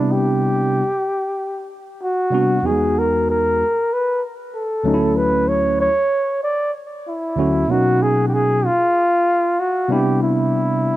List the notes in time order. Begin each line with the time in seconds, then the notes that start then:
Already playing: C3 G3 B3 D4 E4
0.12 G4
2.03 F#4
2.30 C3 G3 B3 D4 F#4
2.62 E2 F#3 B3 D#4 F#4 G#4
2.70 G#3
2.98 A#4
3.30 A#4
3.93 B4
4.55 A4
4.84 D2 F#3 A3 C#4 D#4
4.94 E4
5.16 B4
5.48 C#5
5.80 C#5
6.43 D5
7.08 E4
7.36 D2 F#3 A3 C#4 F#4
7.68 B2 F#3 A#3 C#4 D#4 F#4
8.02 G#4
8.28 G4
8.34 G#4
8.66 F4
9.60 F#4
9.88 C3 G3 B3 D4 E4 G4
10.23 E4